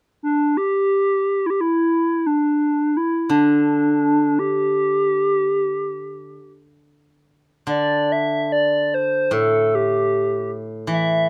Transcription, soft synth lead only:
0.23 0.59 D4 medium
0.57 1.48 G4 medium
1.46 1.51 E4 medium
1.46 1.62 G4 medium
1.60 2.28 E4 medium
2.26 2.98 D4 medium
2.97 3.30 E4 medium
3.31 4.40 D4 medium
4.39 6.53 G4 loud
7.68 8.13 D5 medium
8.12 8.52 E5 loud
8.52 8.96 D5 medium
8.94 9.35 C5 medium
9.33 9.76 A4 medium
9.75 10.51 G4 medium
10.91 11.27 E5 loud

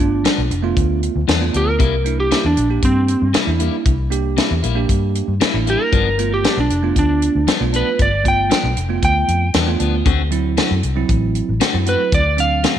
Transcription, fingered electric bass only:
0.00 0.25 G1 medium
0.38 0.48 B1 medium
0.50 0.71 F1 loud
0.77 1.08 D2 medium
1.16 1.26 D2 medium
1.28 1.51 E2 medium
1.54 1.77 D2 medium
1.80 2.31 C2 medium
2.45 2.55 E2 medium
2.57 2.78 A#1 medium
2.83 3.14 G2 medium
3.22 3.32 G2 medium
3.35 muted fingered electric bass stroke soft
3.47 3.68 E2 medium
3.86 4.38 C2 medium
4.51 4.61 E2 medium
4.64 4.84 A#1 medium
4.89 5.20 G2 medium
5.28 5.38 G2 medium
5.41 muted fingered electric bass stroke soft
5.54 5.75 A1 medium
5.93 6.44 G1 medium
6.57 6.68 B1 medium
6.70 6.91 F1 medium
6.96 7.27 D2 medium
7.35 7.45 D2 medium
7.61 7.81 B1 medium
8.00 8.51 G1 medium
8.64 8.74 B1 medium
8.77 8.97 F1 medium
9.03 9.23 D2 medium
9.28 9.51 F2 medium
9.54 9.77 E2 medium
9.80 10.03 D2 medium
10.06 10.57 D2 medium
10.71 10.81 F#2 medium
10.84 11.04 C2 medium
11.09 11.40 A1 medium
11.49 11.59 A1 medium
11.74 11.94 F#2 medium
12.12 12.64 D2 medium

